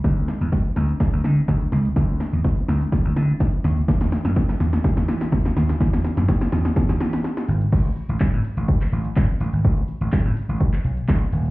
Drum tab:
CC |----------------|----------------|----------------|----------------|
HH |-x-x-x-x-x-x-x-x|-xox-xox-xox-xox|-xox-xox-xox-xox|-xox-xox-xox-xox|
SH |xxxxxxxxxxxxxxxx|xxxxxxxxxxxxxxxx|xxxxxxxxxxxxxxxx|xxxxxxxxxxxxxxxx|
CP |----------------|----------------|----------------|----------------|
SD |o-o-o-o-o-o-o-o-|o-o-o-o-o-o-o-o-|oooooooooooooooo|oooooooooooooo--|
BD |o---o---o---o---|o---o---o---o---|o---o---o---o---|o---o---o-------|

CC |x---------------|----------------|
HH |-xox-xox-xox-xox|-xox-xox-xox-xox|
SH |xxxxxxxxxxxxxxxx|xxxxxxxxxxxxxxxx|
CP |----x----x--x---|----x----x--x---|
SD |----o-------o---|----o-------o---|
BD |o---o---o---o---|o---o---o---o---|